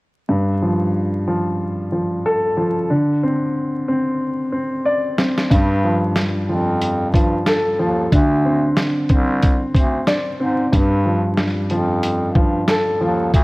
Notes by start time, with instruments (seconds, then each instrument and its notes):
0.29 grand piano G2
0.62 grand piano F3
1.27 grand piano F3
1.92 grand piano F3
2.26 grand piano A4
2.57 grand piano F3
2.90 grand piano D3
3.23 grand piano C4
3.88 grand piano C4
4.52 grand piano C4
4.86 grand piano D5
5.18 grand piano C4, snare
5.38 snare
5.51 grand piano G2, bass clarinet G2, kick, closed hi-hat
5.84 grand piano F3
6.16 snare, closed hi-hat
6.49 bass clarinet F2, grand piano F3
6.82 closed hi-hat
7.14 bass clarinet G2, grand piano F3, kick, closed hi-hat
7.46 grand piano A4, snare, closed hi-hat
7.79 bass clarinet D#2, grand piano F3
8.12 bass clarinet D2, grand piano D3, kick, closed hi-hat
8.45 grand piano C4
8.77 snare, closed hi-hat
9.09 bass clarinet C2, grand piano C4, kick, closed hi-hat
9.42 kick, closed hi-hat
9.74 bass clarinet D2, grand piano C4, kick, closed hi-hat
10.07 grand piano D5, snare, closed hi-hat
10.40 bass clarinet G#2, grand piano C4
10.72 grand piano G2, bass clarinet G2, kick, closed hi-hat
11.06 grand piano F3
11.38 snare, closed hi-hat
11.70 bass clarinet F2, grand piano F3, closed hi-hat
12.03 closed hi-hat
12.35 bass clarinet G2, grand piano F3, kick
12.68 grand piano A4, snare, closed hi-hat
13.00 bass clarinet D#2, grand piano F3
13.34 bass clarinet D2, kick, closed hi-hat